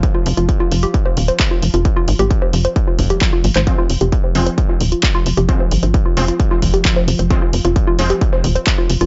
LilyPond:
<<
  \new Staff \with { instrumentName = "Synth arpeggio sound" } { \time 4/4 \key f \minor \tempo 4 = 132 r16 f'16 r16 f'16 r16 f'16 r16 g'16 r16 c''16 r16 c''16 r16 f'16 r16 f'16 | r16 f'16 r16 g'16 r16 c''16 r16 c''16 r16 f'16 r16 g'16 r16 f'16 r16 c''16 | r16 f'16 r16 g'16 r16 c''16 r16 c''16 r16 f'16 r16 f'16 r16 f'16 r16 g'16 | r16 c''16 r16 c''16 r16 f'16 r16 f'16 r16 f'16 r16 g'16 r16 c''16 r16 c''16 |
r16 f'16 r16 f'16 r16 f'16 r16 g'16 r16 c''16 r16 c''16 r16 f'16 r16 f'16 | }
  \new Staff \with { instrumentName = "Ambient pad" } { \time 4/4 \key f \minor <f f'>1~ | <f f'>1 | <f f'>1~ | <f f'>1~ |
<f f'>1 | }
  \new Staff \with { instrumentName = "Synth stab" } { \clef bass \time 4/4 \key f \minor r1 | r1 | <f aes c'>16 r4 r16 <f aes c'>16 r2 r16 | <f aes c'>16 r4 r16 <f aes c'>8 r2 |
<f aes c'>16 r4 r16 <f aes c'>16 r2 r16 | }
  \new Staff \with { instrumentName = "Analog synth bass" } { \clef bass \time 4/4 \key f \minor r8 f,,16 f,,16 r8 f,,16 r8. ees,,16 r8. f,,16 f,,16 | r8 aes,,16 aes,,16 r8 f,,16 r8. f,,16 r8. aes,,16 aes,,16 | r8 f,,16 f,,16 r8 f,,16 r8. ees,,16 r8. f,,16 f,,16 | r8 aes,,16 aes,,16 r8 f,,16 r8. f,,16 r8. f,,16 f,,16 |
r8 f,,16 f,,16 r8 f,,16 r8. ees,,16 r8. f,,16 f,,16 | }
  \new DrumStaff \with { instrumentName = "Drums" } \drummode { \time 4/4 <hh bd>8 hho16 hh16 <hh bd>8 hho16 hh16 <hh bd>8 hho16 hh16 <hc hh bd>8 hho16 hh16 | <hh bd>8 hho16 hh16 <hh bd>8 hho16 hh16 <hh bd>8 <hho bd>16 hh16 <hc hh bd>8 hho16 <hc hh>16 | <hh bd>8 hho16 hh16 <hh bd>8 hho16 hh16 <hh bd>8 hho16 hh16 <hc hh bd>8 hho16 hh16 | <hh bd>8 hho16 hh16 <hh bd>8 hho16 hh16 <hh bd>8 <hho bd>16 hh16 <hc hh bd>8 hho16 hh16 |
<hh bd>8 hho16 hh16 <hh bd>8 hho16 hh16 <hh bd>8 hho16 hh16 <hc hh bd>8 hho16 hh16 | }
>>